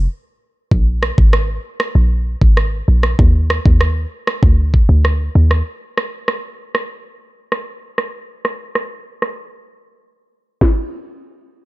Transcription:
0.71 A#1, kick
1.03 cross-stick
1.18 G#1, kick
1.33 cross-stick
1.80 cross-stick
1.95 A#1
2.41 G#1, kick
2.57 cross-stick
2.88 A#1
3.03 cross-stick
3.19 D#2, kick
3.50 cross-stick
3.66 D#2, kick
3.81 cross-stick
4.27 cross-stick
4.43 D2, kick
4.74 kick
4.89 D2
5.05 cross-stick
5.35 D#2
5.51 cross-stick
5.97 cross-stick
6.28 cross-stick
6.75 cross-stick
7.52 cross-stick
7.98 cross-stick
8.45 cross-stick
8.75 cross-stick
9.22 cross-stick
10.61 kick, snare, crash

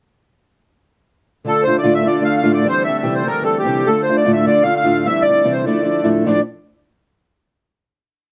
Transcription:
1.45 D3 A3 D4 F4 A4
1.63 C5
1.67 D3 A3 D4 F4
1.78 D5
1.83 D2 A2 D3 A3 D4 F4
1.94 E5
2.05 D3 A3 D4 F4 D5
2.20 D3 A3 D4 F4
2.24 F5
2.37 F5
2.43 D2 A2 D3 A3 D4 F4
2.54 D5
2.65 E3 G3 C4 G4
2.69 C5
2.85 G4 E5
2.89 G3 C4
2.99 E5
3.03 C3 E3 G3 C4 G4
3.14 C5
3.25 E3 G3 C4 G4 A#4
3.42 E3 G3 C4 G4 A4
3.59 G4
3.64 C3 E3 G3 C4 G4
3.86 D3 A3 D4 F4 A4
4.03 C5
4.09 D3 A3 D4 F4
4.17 D5
4.25 D2 A2 D3 A3 D4 F4
4.33 E5
4.46 D3 A3 D4 F4 D5
4.63 D3 A3 D4 F4 F5
4.76 F5
4.84 D2 A2 D3 A3 D4 F4
5.06 E3 G3 C4 E4 E5
5.22 D5
5.28 G3 C4 E4
5.44 C3 E3 G3 C4 E4
5.53 C5
5.66 F3 A3 D4 E4 D5
5.82 F3 A3 D4 E4
6.04 D2 A2 F3 A3 D4 E4
6.26 D2 A2 F3 A3 D4 E4 D5

